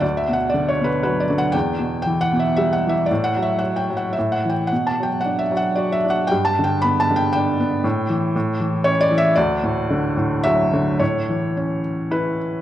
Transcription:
X:1
M:3/4
L:1/8
Q:1/4=114
K:D
V:1 name="Felt piano"
(3d e f (3d c B (3B d f | g2 (3g f e (3e f e | (3d f e (3f g f (3e f g | (3f a g (3f e f (3d e f |
(3g a g (3b a g g2- | g4 (3c d e | d4 e2 | [K:A] c3 z B2 |]
V:2 name="Felt piano" clef=bass
D,, B,, D, B,, F, D, | E,, B,, E, B,, G, E, | A,, F, F F, A,, E, | B,, F, D F, F D |
G,, D, B, D, D B, | A,, E, A,, E, C E, | D,, A,, D, A,, F, D, | [K:A] A,, E, C2 E2 |]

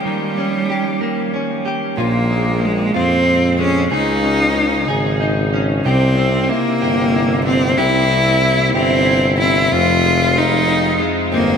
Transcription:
X:1
M:6/8
L:1/8
Q:3/8=62
K:Fm
V:1 name="Clean electric guitar"
[E,B,DG] D G B, D G | [B,,F] A,2 F2 A, | [D,A] D E A E D | [C,G] C =E G E C |
[C,G] C =E G E C | F,, A, F C A, C |]
V:2 name="Cello"
G,4 z2 | B,2 A, C2 D | E4 z2 | C2 B,3 C |
=E3 C2 E | F2 E2 z B, |]
V:3 name="Tuba" clef=bass
z6 | B,,,3 F,,3 | D,,3 A,,,3 | C,,2 z G,,,3 |
C,,3 G,,,3 | F,,,4 z G,,, |]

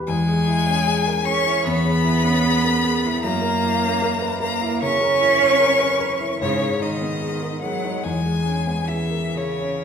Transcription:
X:1
M:4/4
L:1/16
Q:1/4=75
K:C#dor
V:1 name="Violin"
g6 c'2 b8 | a6 a2 c'8 | c2 d4 f2 g4 e2 c2 |]
V:2 name="Grand piano"
E,, G E C G A G E E,, G E C G A G E | F,, A E C A B A E C, A E C A B A E | G,, G D B, G A G D E,, G C B, G A G C |]
V:3 name="Cello" clef=bass
G,6 C2 B,8 | A,6 A,2 C8 | C,2 D,4 F,2 G,4 E,2 C,2 |]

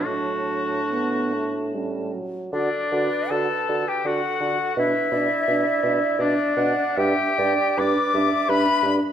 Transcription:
X:1
M:3/4
L:1/16
Q:1/4=79
K:D
V:1 name="Flute"
a8- a2 z2 | d4 a3 g f4 | e8 d4 | g4 d'4 b3 z |]
V:2 name="Clarinet"
D8 C2 z2 | A2 B6 A4 | B2 d6 e2 f2 | e2 d2 B2 e4 z2 |]
V:3 name="Oboe"
F8 z4 | D4 A3 G F4 | E8 D4 | G4 d4 B3 z |]
V:4 name="French horn"
F,4 B,2 A,2 G,2 F,2 | F2 F2 F2 F2 F2 F2 | D2 D2 D2 D2 D2 D2 | D2 D2 D2 D2 D2 D2 |]
V:5 name="Bassoon" clef=bass
A,,8- A,,2 z2 | D,2 D,2 D,2 D,2 D,2 D,2 | B,,2 B,,2 B,,2 B,,2 B,,2 B,,2 | G,,2 G,,2 G,,2 G,,2 G,,2 G,,2 |]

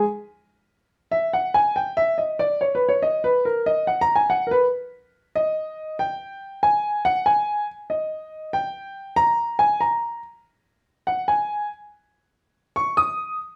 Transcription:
X:1
M:4/4
L:1/8
Q:1/4=142
K:G#m
V:1 name="Grand piano"
z4 z e f g | =g e d =d (3c B c ^d B | A d (3f a g f [AB] z2 | z d3 =g3 ^g- |
g f g2 z d3 | =g3 a2 ^g a2 | z4 f g2 z | z4 c' d'2 z |]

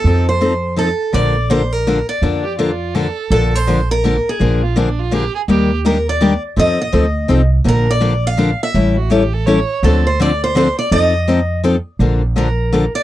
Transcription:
X:1
M:3/4
L:1/16
Q:"Swing" 1/4=166
K:Bb
V:1 name="Steel-string acoustic guitar"
A2 c6 A4 | d4 c2 B4 d2- | d8- d2 z2 | A2 c4 B4 _A2- |
_A2 z8 z2 | z4 B2 d4 z2 | e2 e8 z2 | B2 d4 f4 =e2- |
=e2 z8 z2 | A2 c2 d2 c2 c2 d2 | e8 z4 | z4 B6 d2 |]
V:2 name="Violin"
z12 | z12 | z2 G2 F4 A4 | z12 |
z2 F2 D2 F2 G2 _A2 | G3 z8 z | z12 | z12 |
z2 _G2 =G2 A2 ^c3 z | z12 | z12 | z12 |]
V:3 name="Steel-string acoustic guitar"
[F,CEA]2 z2 [F,CEA] z3 [F,CEA] z3 | [D,F,B,DA]2 z2 [D,F,B,DA] z3 [D,F,B,DA] z3 | [D,F,B,DA]2 z2 [D,F,B,DA] z3 [D,F,B,DA] z3 | [D,F,B,DA]2 z2 [D,F,B,DA] z3 [D,F,B,DA] z3 |
[D,F,B,D_A]2 z2 [D,F,B,DA] z3 [D,F,B,DA] z3 | [E,G,B,DG]2 z2 [E,G,B,DG] z3 [E,G,B,DG] z3 | [F,CEA]2 z2 [F,CEA] z3 [F,CEA] z3 | [D,F,B,DA]2 z2 [D,F,B,DA] z3 [D,F,B,DA] z3 |
[=E,G,^C=EA]2 z2 [E,G,CEA] z3 [E,G,CEA] z3 | [D,F,CDA]2 z2 [D,F,CDA] z3 [D,F,CDA] z3 | [F,CEA]2 z2 [F,CEA] z3 [F,CEA] z3 | [D,F,B,DA]2 z2 [D,F,B,DA] z3 [D,F,B,DA] z3 |]
V:4 name="Upright bass" clef=bass
F,,12 | B,,,12 | F,,12 | B,,,12 |
B,,,12 | E,,12 | F,,4 D,,4 C,,4 | B,,,12 |
A,,,12 | D,,12 | F,,12 | B,,,12 |]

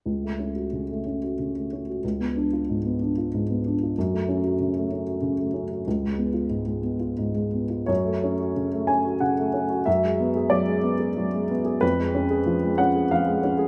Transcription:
X:1
M:3/4
L:1/16
Q:1/4=93
K:F#m
V:1 name="Upright piano"
z12 | z12 | z12 | z12 |
c6 g2 f4 | e4 d6 z2 | B6 f2 ^e4 |]
V:2 name="Upright piano"
C,, A, C F C, A, C F C, A, C F | C,, B, D ^E G,, B, D E G,, B, D E | F,, A, C F C, A, C F C, A, C F | C,, G, B, ^E G,, G, B, E G,, G, B, E |
F,, A, C F C, A, C F C, A, C F | F,, G, B, G F, G, B, G F, G, B, G | ^E,, G, C G ^E, G, C G E, G, C G |]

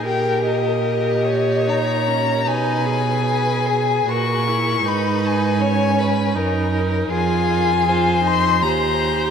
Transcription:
X:1
M:3/4
L:1/8
Q:1/4=78
K:G#m
V:1 name="Violin"
=g d3 a2 | g4 c'2 | b g3 z2 | [K:Fm] a3 c' b2 |]
V:2 name="Violin"
A2 A c3 | B2 B G A2 | B2 c B A2 | [K:Fm] A2 c2 c2 |]
V:3 name="Viola"
=G2 G2 D C | D G3 F E | D2 C2 D D | [K:Fm] F2 F E G2 |]
V:4 name="Cello" clef=bass
A,,6 | B,,4 A,,2 | G,,4 F,,2 | [K:Fm] F,,4 E,,2 |]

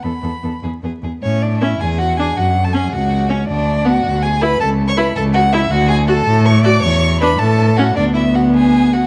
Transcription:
X:1
M:6/8
L:1/16
Q:3/8=106
K:A
V:1 name="Violin"
b6 z6 | c2 d2 e2 g2 f2 g2 | f3 a g2 f4 c2 | d4 f4 g2 b2 |
a3 c' b2 a2 f2 e2 | f2 g2 a4 c'2 d'2 | c'4 b2 a4 f2 | d2 e2 f2 g4 f2 |]
V:2 name="Violin"
A2 A2 A2 G2 G2 G2 | C2 D2 E2 G2 F2 G2 | F3 A G2 F4 C2 | D4 F4 G2 B2 |
A3 c B2 A2 F2 E2 | F2 G2 A4 c2 d2 | c4 B2 A4 F2 | D2 E2 F2 G4 F2 |]
V:3 name="Viola"
B,2 B,2 B,2 B,2 B,2 B,2 | z4 C z4 z D z | z4 C z4 z C z | z4 B, z4 z E z |
z4 E z4 z E z | z4 F z4 z F z | z4 D z4 z C z | B,12 |]
V:4 name="Cello" clef=bass
E,,2 E,,2 E,,2 E,,2 E,,2 E,,2 | A,,6 E,,6 | F,,6 C,,6 | D,,6 D,,6 |
C,,6 C,,6 | D,,6 A,,6 | E,,6 A,,6 | D,,12 |]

